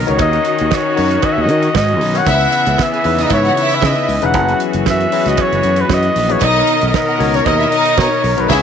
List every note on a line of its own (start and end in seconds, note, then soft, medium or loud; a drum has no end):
0.00 0.06 B2 medium
0.00 2.23 D#3 medium
0.00 0.06 B3 medium
0.00 0.18 B3 medium
0.00 0.07 D#4 medium
0.00 0.07 A#4 medium
0.00 0.18 A#4 loud
0.00 0.07 C#5 medium
0.00 0.21 D#5 medium
0.06 0.17 C#2 medium
0.06 0.16 B2 medium
0.06 0.16 B3 medium
0.06 0.16 D#4 medium
0.06 0.16 A#4 medium
0.06 0.16 C#5 medium
0.06 0.20 C#5 medium
0.06 closed hi-hat medium
0.18 0.38 D#2 loud
0.18 0.77 D#3 medium
0.18 2.25 C#4 medium
0.18 0.78 D#4 medium
0.18 0.78 F#4 medium
0.18 2.25 F#4 medium
0.18 0.78 A#4 medium
0.18 0.78 C#5 medium
0.18 0.77 D#5 loud
0.18 kick loud
0.18 closed hi-hat loud
0.18 cowbell medium
0.33 closed hi-hat soft
0.45 closed hi-hat medium
0.59 0.69 D#2 loud
0.59 closed hi-hat medium
0.71 kick loud
0.71 snare loud
0.71 cowbell medium
0.75 1.27 C#5 loud
0.96 1.16 F#2 medium
0.96 1.75 D#3 medium
0.96 1.75 D#4 medium
0.96 1.75 F#4 medium
0.96 1.75 A#4 medium
0.96 1.75 D#5 medium
0.96 open hi-hat medium
1.11 closed hi-hat medium
1.22 1.34 D#5 loud
1.22 kick loud
1.22 closed hi-hat medium
1.22 cowbell medium
1.32 1.43 E5 loud
1.38 1.50 D#2 medium
1.38 1.75 D#5 loud
1.49 1.68 D#3 loud
1.49 closed hi-hat medium
1.63 closed hi-hat medium
1.75 2.02 G#2 loud
1.75 2.19 D#5 loud
1.75 kick loud
1.75 snare loud
1.75 cowbell loud
1.88 closed hi-hat soft
2.01 2.20 B1 medium
2.01 open hi-hat medium
2.14 2.23 D#3 medium
2.14 2.24 D#4 medium
2.14 2.24 F#4 medium
2.14 2.24 A#4 medium
2.14 2.24 C#5 loud
2.14 2.85 F#5 loud
2.14 closed hi-hat medium
2.25 2.45 C#2 loud
2.25 4.32 C#3 medium
2.25 2.85 C#3 medium
2.25 4.31 E3 medium
2.25 4.31 B3 medium
2.25 2.86 B3 medium
2.25 2.86 C#4 medium
2.25 2.76 E4 loud
2.25 2.86 E4 medium
2.25 2.86 B4 medium
2.25 2.75 E5 loud
2.25 kick loud
2.25 closed hi-hat loud
2.25 cowbell medium
2.41 closed hi-hat soft
2.52 closed hi-hat medium
2.66 2.75 C#2 loud
2.66 closed hi-hat soft
2.78 kick loud
2.78 snare loud
2.78 cowbell medium
2.83 3.24 E5 loud
2.92 3.02 G#4 medium
2.92 3.02 G#5 medium
2.92 closed hi-hat soft
3.04 3.23 E2 medium
3.04 3.83 C#3 medium
3.04 3.82 C#4 medium
3.04 3.83 D#4 medium
3.04 3.83 E4 medium
3.04 3.83 B4 medium
3.04 open hi-hat medium
3.19 3.28 D#4 medium
3.19 3.28 D#5 loud
3.19 3.32 D#5 medium
3.19 snare soft
3.19 closed hi-hat medium
3.30 3.49 G#2 medium
3.30 3.42 E4 medium
3.30 3.76 C#5 loud
3.30 3.42 E5 loud
3.30 kick loud
3.30 closed hi-hat medium
3.30 cowbell medium
3.45 3.55 F#4 medium
3.45 3.55 F#5 medium
3.45 closed hi-hat soft
3.57 4.05 E4 loud
3.57 4.05 E5 loud
3.57 closed hi-hat medium
3.71 3.88 E5 loud
3.71 closed hi-hat soft
3.82 3.93 C#3 loud
3.82 kick loud
3.82 snare loud
3.82 cowbell medium
3.86 4.27 D#5 loud
3.95 closed hi-hat soft
4.09 4.18 C#2 medium
4.09 open hi-hat medium
4.22 4.34 E1 medium
4.22 4.31 C#3 medium
4.22 4.31 C#4 medium
4.22 4.31 D#4 medium
4.22 4.32 E4 medium
4.22 4.32 B4 medium
4.22 4.61 F#5 loud
4.22 closed hi-hat medium
4.33 4.53 F#1 loud
4.33 6.40 E3 medium
4.33 4.93 F#3 medium
4.33 8.46 B3 medium
4.33 4.93 C#4 medium
4.33 4.93 E4 medium
4.33 6.40 F#4 medium
4.33 4.93 G#4 medium
4.33 4.41 A#4 medium
4.33 kick loud
4.33 closed hi-hat medium
4.33 cowbell medium
4.42 4.97 B4 medium
4.49 closed hi-hat soft
4.60 closed hi-hat medium
4.73 4.83 F#1 loud
4.73 closed hi-hat medium
4.86 5.05 F#2 loud
4.86 5.30 E5 loud
4.86 kick loud
4.86 snare loud
4.86 cowbell medium
5.00 closed hi-hat soft
5.12 5.90 F#3 medium
5.12 5.90 C#4 medium
5.12 5.90 E4 medium
5.12 5.91 G#4 medium
5.12 5.91 B4 medium
5.12 open hi-hat medium
5.26 5.35 C#2 medium
5.26 5.43 D#5 loud
5.26 snare soft
5.26 closed hi-hat medium
5.37 5.83 C#5 loud
5.37 kick loud
5.37 closed hi-hat medium
5.37 cowbell medium
5.52 5.61 F#1 medium
5.52 closed hi-hat soft
5.63 5.82 F#2 medium
5.63 closed hi-hat medium
5.76 closed hi-hat medium
5.81 5.95 B4 loud
5.89 6.08 F#2 loud
5.89 kick loud
5.89 snare loud
5.89 cowbell medium
5.94 6.34 D#5 loud
6.03 closed hi-hat soft
6.16 6.35 A#1 loud
6.16 open hi-hat medium
6.29 6.39 F#3 medium
6.29 6.38 C#4 medium
6.29 6.39 E4 medium
6.29 6.39 G#4 medium
6.29 6.39 B4 medium
6.29 6.46 C#5 loud
6.29 closed hi-hat medium
6.41 6.61 B1 loud
6.41 7.00 B2 medium
6.41 8.48 D#3 medium
6.41 7.01 B3 medium
6.41 6.91 D#4 loud
6.41 7.01 D#4 medium
6.41 8.48 A#4 medium
6.41 7.01 A#4 medium
6.41 7.01 C#5 medium
6.41 6.90 D#5 loud
6.41 6.95 D#5 loud
6.41 kick loud
6.41 closed hi-hat loud
6.41 cowbell medium
6.67 closed hi-hat medium
6.81 6.91 B1 loud
6.81 closed hi-hat soft
6.94 7.37 D#5 loud
6.94 kick loud
6.94 snare loud
6.94 cowbell medium
7.08 7.18 F#4 medium
7.08 7.18 F#5 medium
7.08 closed hi-hat soft
7.18 7.39 C#2 loud
7.18 7.97 B2 medium
7.18 7.97 B3 medium
7.18 7.98 D#4 medium
7.18 7.98 A#4 medium
7.18 7.98 C#5 medium
7.18 open hi-hat medium
7.34 7.44 C#4 medium
7.34 7.44 C#5 loud
7.34 7.47 C#5 medium
7.34 snare soft
7.34 closed hi-hat medium
7.46 7.65 D#2 loud
7.46 7.57 D#4 loud
7.46 8.00 D#5 loud
7.46 7.57 D#5 loud
7.46 kick loud
7.46 closed hi-hat medium
7.46 cowbell loud
7.59 7.69 E4 medium
7.59 7.69 E5 loud
7.71 8.20 D#4 loud
7.71 8.20 D#5 loud
7.71 closed hi-hat medium
7.86 closed hi-hat medium
7.97 8.08 B2 loud
7.97 8.42 C#5 loud
7.97 kick loud
7.97 snare loud
7.97 cowbell medium
8.24 8.34 B1 loud
8.24 open hi-hat medium
8.37 8.47 B1 medium
8.37 8.46 B2 medium
8.37 8.46 B3 medium
8.37 8.47 D#4 medium
8.37 8.47 A#4 medium
8.37 8.51 B4 medium
8.37 8.47 C#5 medium
8.37 closed hi-hat medium
8.49 8.62 C#2 loud
8.49 8.62 C#3 loud
8.49 8.62 C#3 medium
8.49 8.62 B3 loud
8.49 8.62 B3 medium
8.49 8.62 E4 loud
8.49 8.62 E4 medium
8.49 8.62 E4 loud
8.49 8.62 G#4 loud
8.49 8.62 C#5 medium
8.49 8.62 E5 loud
8.49 kick loud
8.49 snare loud
8.49 crash medium